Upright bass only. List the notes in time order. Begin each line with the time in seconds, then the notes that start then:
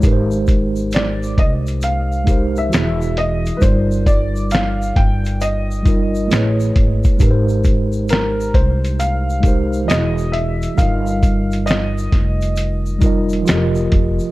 0.04 G#1
1.39 C2
2.73 E1
3.62 G1
4.97 G1
6.31 A1
6.77 G#1
7.21 G#1
8.55 C2
9.89 E1
10.79 G1
12.13 F1
13.49 F1
13.93 F1